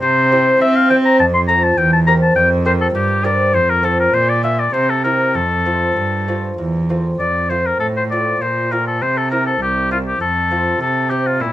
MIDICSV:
0, 0, Header, 1, 4, 480
1, 0, Start_track
1, 0, Key_signature, -1, "major"
1, 0, Tempo, 588235
1, 16, Time_signature, 3, 2, 24, 8
1, 3375, Tempo, 612245
1, 6255, Tempo, 599401
1, 9231, End_track
2, 0, Start_track
2, 0, Title_t, "Oboe"
2, 0, Program_c, 0, 68
2, 13, Note_on_c, 0, 72, 91
2, 462, Note_off_c, 0, 72, 0
2, 501, Note_on_c, 0, 76, 88
2, 619, Note_on_c, 0, 77, 83
2, 632, Note_off_c, 0, 76, 0
2, 729, Note_off_c, 0, 77, 0
2, 734, Note_on_c, 0, 79, 88
2, 787, Note_off_c, 0, 79, 0
2, 859, Note_on_c, 0, 82, 85
2, 972, Note_off_c, 0, 82, 0
2, 975, Note_on_c, 0, 81, 87
2, 1028, Note_off_c, 0, 81, 0
2, 1091, Note_on_c, 0, 84, 81
2, 1144, Note_off_c, 0, 84, 0
2, 1206, Note_on_c, 0, 82, 93
2, 1331, Note_on_c, 0, 81, 81
2, 1343, Note_off_c, 0, 82, 0
2, 1449, Note_on_c, 0, 79, 92
2, 1462, Note_off_c, 0, 81, 0
2, 1569, Note_off_c, 0, 79, 0
2, 1575, Note_on_c, 0, 81, 83
2, 1627, Note_off_c, 0, 81, 0
2, 1687, Note_on_c, 0, 82, 94
2, 1741, Note_off_c, 0, 82, 0
2, 1814, Note_on_c, 0, 81, 77
2, 1919, Note_off_c, 0, 81, 0
2, 1924, Note_on_c, 0, 79, 90
2, 2034, Note_off_c, 0, 79, 0
2, 2171, Note_on_c, 0, 72, 76
2, 2225, Note_off_c, 0, 72, 0
2, 2292, Note_on_c, 0, 69, 69
2, 2346, Note_off_c, 0, 69, 0
2, 2411, Note_on_c, 0, 67, 73
2, 2648, Note_on_c, 0, 74, 89
2, 2660, Note_off_c, 0, 67, 0
2, 2890, Note_on_c, 0, 72, 78
2, 2903, Note_off_c, 0, 74, 0
2, 3015, Note_on_c, 0, 70, 73
2, 3027, Note_off_c, 0, 72, 0
2, 3136, Note_on_c, 0, 69, 78
2, 3148, Note_off_c, 0, 70, 0
2, 3256, Note_off_c, 0, 69, 0
2, 3263, Note_on_c, 0, 70, 70
2, 3376, Note_on_c, 0, 72, 80
2, 3387, Note_off_c, 0, 70, 0
2, 3497, Note_on_c, 0, 74, 71
2, 3508, Note_off_c, 0, 72, 0
2, 3606, Note_off_c, 0, 74, 0
2, 3611, Note_on_c, 0, 76, 77
2, 3734, Note_on_c, 0, 74, 64
2, 3745, Note_off_c, 0, 76, 0
2, 3842, Note_on_c, 0, 72, 74
2, 3854, Note_off_c, 0, 74, 0
2, 3971, Note_on_c, 0, 69, 66
2, 3983, Note_off_c, 0, 72, 0
2, 4075, Note_off_c, 0, 69, 0
2, 4079, Note_on_c, 0, 70, 70
2, 4325, Note_on_c, 0, 69, 78
2, 4337, Note_off_c, 0, 70, 0
2, 5296, Note_off_c, 0, 69, 0
2, 5772, Note_on_c, 0, 74, 72
2, 6010, Note_on_c, 0, 72, 61
2, 6022, Note_off_c, 0, 74, 0
2, 6136, Note_on_c, 0, 70, 57
2, 6148, Note_off_c, 0, 72, 0
2, 6240, Note_off_c, 0, 70, 0
2, 6245, Note_on_c, 0, 69, 68
2, 6302, Note_off_c, 0, 69, 0
2, 6379, Note_on_c, 0, 72, 61
2, 6433, Note_off_c, 0, 72, 0
2, 6492, Note_on_c, 0, 74, 69
2, 6738, Note_on_c, 0, 72, 60
2, 6750, Note_off_c, 0, 74, 0
2, 6979, Note_on_c, 0, 70, 70
2, 6991, Note_off_c, 0, 72, 0
2, 7099, Note_off_c, 0, 70, 0
2, 7103, Note_on_c, 0, 69, 62
2, 7221, Note_on_c, 0, 72, 72
2, 7233, Note_off_c, 0, 69, 0
2, 7345, Note_on_c, 0, 69, 66
2, 7357, Note_off_c, 0, 72, 0
2, 7452, Note_off_c, 0, 69, 0
2, 7457, Note_on_c, 0, 70, 65
2, 7574, Note_off_c, 0, 70, 0
2, 7582, Note_on_c, 0, 69, 62
2, 7696, Note_off_c, 0, 69, 0
2, 7702, Note_on_c, 0, 67, 65
2, 7933, Note_off_c, 0, 67, 0
2, 7943, Note_on_c, 0, 65, 64
2, 7996, Note_off_c, 0, 65, 0
2, 8065, Note_on_c, 0, 67, 59
2, 8174, Note_off_c, 0, 67, 0
2, 8179, Note_on_c, 0, 69, 71
2, 8649, Note_off_c, 0, 69, 0
2, 8658, Note_on_c, 0, 69, 74
2, 8891, Note_on_c, 0, 67, 62
2, 8903, Note_off_c, 0, 69, 0
2, 9021, Note_on_c, 0, 65, 61
2, 9033, Note_off_c, 0, 67, 0
2, 9136, Note_on_c, 0, 64, 66
2, 9148, Note_off_c, 0, 65, 0
2, 9231, Note_off_c, 0, 64, 0
2, 9231, End_track
3, 0, Start_track
3, 0, Title_t, "Lute"
3, 0, Program_c, 1, 24
3, 19, Note_on_c, 1, 48, 56
3, 258, Note_on_c, 1, 60, 44
3, 261, Note_on_c, 1, 64, 44
3, 264, Note_on_c, 1, 67, 46
3, 465, Note_off_c, 1, 48, 0
3, 491, Note_off_c, 1, 60, 0
3, 501, Note_on_c, 1, 60, 54
3, 703, Note_off_c, 1, 64, 0
3, 705, Note_off_c, 1, 67, 0
3, 727, Note_off_c, 1, 60, 0
3, 737, Note_on_c, 1, 60, 43
3, 742, Note_on_c, 1, 64, 47
3, 743, Note_on_c, 1, 67, 48
3, 949, Note_off_c, 1, 60, 0
3, 951, Note_off_c, 1, 64, 0
3, 952, Note_off_c, 1, 67, 0
3, 976, Note_on_c, 1, 41, 54
3, 1211, Note_on_c, 1, 60, 48
3, 1215, Note_on_c, 1, 65, 47
3, 1220, Note_on_c, 1, 69, 49
3, 1418, Note_off_c, 1, 41, 0
3, 1426, Note_off_c, 1, 60, 0
3, 1428, Note_off_c, 1, 65, 0
3, 1430, Note_off_c, 1, 69, 0
3, 1451, Note_on_c, 1, 40, 57
3, 1691, Note_on_c, 1, 60, 43
3, 1695, Note_on_c, 1, 67, 45
3, 1698, Note_on_c, 1, 70, 50
3, 1898, Note_off_c, 1, 40, 0
3, 1926, Note_on_c, 1, 41, 53
3, 2139, Note_off_c, 1, 60, 0
3, 2141, Note_off_c, 1, 67, 0
3, 2142, Note_off_c, 1, 70, 0
3, 2164, Note_on_c, 1, 60, 42
3, 2166, Note_on_c, 1, 67, 44
3, 2172, Note_on_c, 1, 70, 46
3, 2376, Note_off_c, 1, 41, 0
3, 2405, Note_on_c, 1, 43, 58
3, 2615, Note_off_c, 1, 60, 0
3, 2617, Note_off_c, 1, 67, 0
3, 2618, Note_off_c, 1, 70, 0
3, 2644, Note_on_c, 1, 60, 45
3, 2648, Note_on_c, 1, 67, 44
3, 2651, Note_on_c, 1, 70, 49
3, 2857, Note_off_c, 1, 43, 0
3, 2865, Note_off_c, 1, 60, 0
3, 2867, Note_off_c, 1, 67, 0
3, 2868, Note_off_c, 1, 70, 0
3, 2883, Note_on_c, 1, 41, 51
3, 3123, Note_on_c, 1, 60, 40
3, 3127, Note_on_c, 1, 65, 39
3, 3133, Note_on_c, 1, 69, 46
3, 3340, Note_off_c, 1, 41, 0
3, 3346, Note_off_c, 1, 60, 0
3, 3349, Note_off_c, 1, 65, 0
3, 3352, Note_off_c, 1, 69, 0
3, 3606, Note_on_c, 1, 58, 40
3, 3610, Note_on_c, 1, 62, 38
3, 3612, Note_on_c, 1, 65, 42
3, 3821, Note_off_c, 1, 58, 0
3, 3822, Note_off_c, 1, 62, 0
3, 3825, Note_off_c, 1, 65, 0
3, 3847, Note_on_c, 1, 48, 51
3, 4085, Note_on_c, 1, 60, 39
3, 4091, Note_on_c, 1, 64, 43
3, 4296, Note_off_c, 1, 48, 0
3, 4303, Note_off_c, 1, 60, 0
3, 4306, Note_off_c, 1, 64, 0
3, 4321, Note_on_c, 1, 41, 43
3, 4565, Note_on_c, 1, 57, 34
3, 4569, Note_on_c, 1, 60, 36
3, 4572, Note_on_c, 1, 65, 36
3, 4778, Note_off_c, 1, 41, 0
3, 4787, Note_off_c, 1, 57, 0
3, 4787, Note_off_c, 1, 60, 0
3, 4808, Note_on_c, 1, 43, 43
3, 5026, Note_off_c, 1, 65, 0
3, 5055, Note_on_c, 1, 57, 35
3, 5059, Note_on_c, 1, 60, 34
3, 5063, Note_on_c, 1, 65, 38
3, 5263, Note_off_c, 1, 43, 0
3, 5273, Note_off_c, 1, 57, 0
3, 5274, Note_off_c, 1, 60, 0
3, 5294, Note_on_c, 1, 40, 44
3, 5510, Note_off_c, 1, 65, 0
3, 5536, Note_on_c, 1, 57, 35
3, 5542, Note_on_c, 1, 60, 35
3, 5542, Note_on_c, 1, 65, 39
3, 5745, Note_off_c, 1, 40, 0
3, 5754, Note_off_c, 1, 57, 0
3, 5755, Note_off_c, 1, 60, 0
3, 5756, Note_off_c, 1, 65, 0
3, 5776, Note_on_c, 1, 41, 40
3, 6011, Note_on_c, 1, 57, 34
3, 6017, Note_on_c, 1, 60, 34
3, 6017, Note_on_c, 1, 65, 36
3, 6223, Note_off_c, 1, 41, 0
3, 6250, Note_on_c, 1, 45, 42
3, 6462, Note_off_c, 1, 57, 0
3, 6463, Note_off_c, 1, 60, 0
3, 6464, Note_off_c, 1, 65, 0
3, 6501, Note_on_c, 1, 57, 33
3, 6505, Note_on_c, 1, 60, 33
3, 6508, Note_on_c, 1, 65, 35
3, 6702, Note_off_c, 1, 45, 0
3, 6715, Note_off_c, 1, 57, 0
3, 6718, Note_off_c, 1, 60, 0
3, 6741, Note_on_c, 1, 46, 42
3, 6952, Note_off_c, 1, 65, 0
3, 6980, Note_on_c, 1, 57, 35
3, 6983, Note_on_c, 1, 60, 35
3, 6988, Note_on_c, 1, 65, 38
3, 7189, Note_off_c, 1, 46, 0
3, 7196, Note_off_c, 1, 57, 0
3, 7198, Note_off_c, 1, 60, 0
3, 7200, Note_off_c, 1, 65, 0
3, 7222, Note_on_c, 1, 48, 41
3, 7457, Note_on_c, 1, 58, 34
3, 7459, Note_on_c, 1, 60, 35
3, 7464, Note_on_c, 1, 64, 37
3, 7665, Note_off_c, 1, 48, 0
3, 7902, Note_off_c, 1, 58, 0
3, 7904, Note_off_c, 1, 60, 0
3, 7905, Note_off_c, 1, 64, 0
3, 7936, Note_on_c, 1, 58, 33
3, 7939, Note_on_c, 1, 60, 33
3, 7941, Note_on_c, 1, 64, 38
3, 8152, Note_off_c, 1, 58, 0
3, 8153, Note_off_c, 1, 60, 0
3, 8155, Note_off_c, 1, 64, 0
3, 8172, Note_on_c, 1, 41, 43
3, 8415, Note_on_c, 1, 57, 35
3, 8419, Note_on_c, 1, 60, 36
3, 8421, Note_on_c, 1, 65, 37
3, 8623, Note_off_c, 1, 41, 0
3, 8632, Note_off_c, 1, 57, 0
3, 8634, Note_off_c, 1, 60, 0
3, 8635, Note_off_c, 1, 65, 0
3, 8653, Note_on_c, 1, 48, 44
3, 8893, Note_on_c, 1, 60, 35
3, 8898, Note_on_c, 1, 67, 39
3, 9101, Note_off_c, 1, 48, 0
3, 9129, Note_on_c, 1, 46, 42
3, 9231, Note_off_c, 1, 46, 0
3, 9231, Note_off_c, 1, 60, 0
3, 9231, Note_off_c, 1, 67, 0
3, 9231, End_track
4, 0, Start_track
4, 0, Title_t, "Cello"
4, 0, Program_c, 2, 42
4, 17, Note_on_c, 2, 48, 67
4, 464, Note_off_c, 2, 48, 0
4, 500, Note_on_c, 2, 60, 68
4, 976, Note_on_c, 2, 41, 66
4, 989, Note_off_c, 2, 60, 0
4, 1444, Note_off_c, 2, 41, 0
4, 1449, Note_on_c, 2, 40, 71
4, 1920, Note_off_c, 2, 40, 0
4, 1929, Note_on_c, 2, 41, 71
4, 2400, Note_off_c, 2, 41, 0
4, 2406, Note_on_c, 2, 43, 65
4, 2891, Note_on_c, 2, 41, 64
4, 2903, Note_off_c, 2, 43, 0
4, 3373, Note_off_c, 2, 41, 0
4, 3378, Note_on_c, 2, 46, 61
4, 3839, Note_off_c, 2, 46, 0
4, 3847, Note_on_c, 2, 48, 57
4, 4328, Note_on_c, 2, 41, 58
4, 4339, Note_off_c, 2, 48, 0
4, 4808, Note_off_c, 2, 41, 0
4, 4813, Note_on_c, 2, 43, 54
4, 5287, Note_off_c, 2, 43, 0
4, 5297, Note_on_c, 2, 40, 48
4, 5769, Note_off_c, 2, 40, 0
4, 5775, Note_on_c, 2, 41, 52
4, 6222, Note_off_c, 2, 41, 0
4, 6252, Note_on_c, 2, 45, 51
4, 6726, Note_off_c, 2, 45, 0
4, 6734, Note_on_c, 2, 46, 47
4, 7218, Note_on_c, 2, 48, 52
4, 7230, Note_off_c, 2, 46, 0
4, 7690, Note_off_c, 2, 48, 0
4, 7694, Note_on_c, 2, 36, 55
4, 8165, Note_off_c, 2, 36, 0
4, 8172, Note_on_c, 2, 41, 54
4, 8646, Note_off_c, 2, 41, 0
4, 8653, Note_on_c, 2, 48, 53
4, 9133, Note_on_c, 2, 46, 57
4, 9145, Note_off_c, 2, 48, 0
4, 9231, Note_off_c, 2, 46, 0
4, 9231, End_track
0, 0, End_of_file